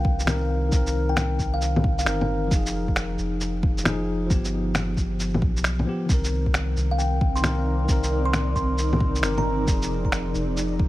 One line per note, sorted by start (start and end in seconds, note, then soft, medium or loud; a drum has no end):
0.00 0.71 C2 medium
0.00 0.23 D#3 medium
0.00 0.25 C4 medium
0.00 0.28 A#4 medium
0.05 kick loud
0.19 shaker medium
0.26 0.67 D#3 medium
0.26 0.70 C4 medium
0.26 0.71 A#4 loud
0.26 finger snap loud
0.26 low bongo medium
0.26 shaker medium
0.68 1.38 C2 loud
0.68 2.03 D#3 medium
0.68 2.05 C4 medium
0.68 kick loud
0.68 shaker medium
0.76 2.07 A#4 medium
0.87 shaker medium
1.09 1.32 G5 medium
1.17 finger snap loud
1.17 low bongo medium
1.17 shaker medium
1.39 2.05 C2 medium
1.39 kick medium
1.39 shaker soft
1.54 1.96 F5 medium
1.61 shaker medium
1.76 low bongo medium
1.84 kick loud
1.99 2.29 F5 medium
1.99 shaker medium
2.04 2.50 G1 medium
2.04 2.48 D#3 medium
2.04 2.49 C4 medium
2.04 2.50 A#4 loud
2.04 finger snap loud
2.04 shaker medium
2.21 low bongo medium
2.47 3.82 F3 medium
2.51 3.17 F1 loud
2.51 3.84 D#4 medium
2.51 kick loud
2.51 shaker medium
2.55 3.86 G#4 medium
2.66 shaker medium
2.88 kick medium
2.96 finger snap loud
2.96 shaker medium
3.18 4.29 F1 medium
3.18 shaker soft
3.41 shaker medium
3.63 kick loud
3.78 shaker medium
3.84 4.25 F3 medium
3.84 4.29 D#4 medium
3.84 finger snap loud
3.84 low bongo medium
3.84 shaker medium
3.88 4.30 G#4 loud
4.26 5.61 F3 medium
4.26 5.63 B3 medium
4.26 kick loud
4.26 shaker medium
4.30 4.96 G1 loud
4.30 5.65 G4 medium
4.45 shaker medium
4.75 finger snap loud
4.75 low bongo medium
4.75 shaker medium
4.97 5.41 G1 medium
4.97 kick medium
4.97 shaker soft
5.20 shaker medium
5.34 low bongo medium
5.42 5.86 B1 medium
5.42 kick loud
5.57 shaker soft
5.64 finger snap loud
5.64 shaker medium
5.79 low bongo soft
5.85 6.07 F3 medium
5.85 6.08 B3 medium
5.85 6.09 G4 medium
6.05 6.75 C2 loud
6.05 7.40 D#3 medium
6.05 kick loud
6.09 9.68 C3 medium
6.09 7.42 C4 medium
6.09 shaker medium
6.13 7.44 A#4 medium
6.24 shaker medium
6.29 10.88 C4 medium
6.29 10.40 A#4 medium
6.46 kick medium
6.54 finger snap loud
6.54 shaker medium
6.73 7.88 C2 medium
6.73 10.88 D#4 medium
6.73 10.41 D5 medium
6.73 shaker soft
6.91 6.97 F5 medium
6.99 7.23 G5 medium
6.99 shaker soft
7.21 kick loud
7.36 7.66 C6 medium
7.36 shaker soft
7.42 7.83 D#3 medium
7.42 7.87 C4 medium
7.42 7.88 A#4 loud
7.42 finger snap loud
7.42 low bongo medium
7.42 shaker soft
7.85 8.55 C2 loud
7.85 9.19 D#3 medium
7.85 9.21 C4 medium
7.85 kick loud
7.85 shaker medium
7.92 9.23 A#4 medium
8.03 shaker soft
8.25 8.49 C6 medium
8.33 finger snap loud
8.33 low bongo medium
8.33 shaker medium
8.56 9.22 C2 medium
8.56 8.80 C6 medium
8.56 kick medium
8.56 shaker soft
8.78 shaker soft
8.93 low bongo medium
9.00 kick loud
9.15 shaker medium
9.21 9.67 G1 medium
9.21 9.65 D#3 medium
9.21 9.66 C4 medium
9.21 9.67 A#4 loud
9.21 finger snap loud
9.21 shaker soft
9.37 9.68 A#5 medium
9.37 low bongo medium
9.64 10.34 F1 loud
9.64 10.88 F3 medium
9.64 10.88 D#4 medium
9.64 kick loud
9.64 shaker medium
9.72 10.88 G#4 medium
9.82 shaker medium
10.05 kick medium
10.12 finger snap loud
10.12 shaker medium
10.35 10.88 F1 medium
10.35 shaker soft
10.51 10.88 G5 medium
10.57 shaker medium
10.79 kick loud